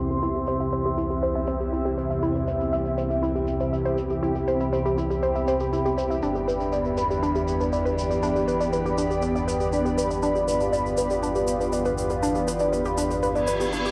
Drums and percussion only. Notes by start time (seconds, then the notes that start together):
0.10 shaker
0.22 shaker
0.35 shaker
0.47 shaker
0.60 shaker
0.72 shaker
0.86 shaker
0.97 shaker
1.10 shaker
1.23 shaker
1.35 shaker
1.47 shaker
1.60 shaker
1.73 shaker
1.86 shaker
1.98 shaker
2.10 shaker
2.22 shaker
2.35 shaker
2.48 shaker
2.60 shaker
2.73 shaker
2.85 shaker
2.98 shaker
3.10 shaker
3.23 shaker
3.36 shaker
3.47 shaker
3.60 shaker
3.73 shaker
3.85 shaker
3.98 shaker
4.10 shaker
4.23 shaker
4.35 shaker
4.48 shaker
4.60 shaker
4.73 shaker
4.86 shaker
4.98 shaker
5.11 shaker
5.23 shaker
5.35 shaker
5.48 shaker
5.60 shaker
5.73 shaker
5.85 shaker
5.98 shaker
6.11 shaker
6.23 shaker
6.35 shaker
6.49 shaker
6.60 shaker
6.72 shaker
6.85 shaker
6.97 shaker
7.11 shaker
7.23 shaker
7.35 shaker
7.48 shaker
7.61 shaker
7.73 shaker
7.86 shaker
7.98 shaker
8.11 shaker
8.23 shaker
8.36 shaker
8.48 shaker
8.61 shaker
8.73 shaker
8.86 shaker
8.98 shaker
9.11 shaker
9.22 shaker
9.36 shaker
9.48 shaker
9.60 shaker
9.72 shaker
9.86 shaker
9.98 shaker
10.11 shaker
10.23 shaker
10.36 shaker
10.48 shaker
10.60 shaker
10.73 shaker
10.86 shaker
10.97 shaker
11.10 shaker
11.23 shaker
11.35 shaker
11.47 shaker
11.61 shaker
11.72 shaker
11.85 shaker
11.98 shaker
12.10 shaker
12.23 shaker
12.35 shaker
12.48 shaker
12.59 shaker
12.73 shaker
12.85 shaker
12.98 shaker
13.11 shaker
13.23 shaker
13.36 shaker
13.47 shaker
13.61 shaker
13.73 shaker
13.85 shaker